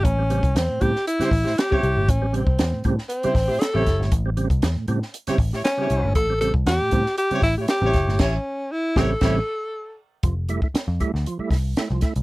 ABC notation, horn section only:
X:1
M:4/4
L:1/16
Q:1/4=118
K:Amix
V:1 name="Horn section"
z8 z [EG^B] z [EGB] z [EGc]3 | z8 z [EG^B] z [EGB] z [EGc]3 | z8 z [EGc] z [EGc] z [EGc]3 | z8 z [EGc] z [EGc] z [EGc]3 |
[EGc]2 z4 [EGc]2 [EGc]2 z6 | z16 |]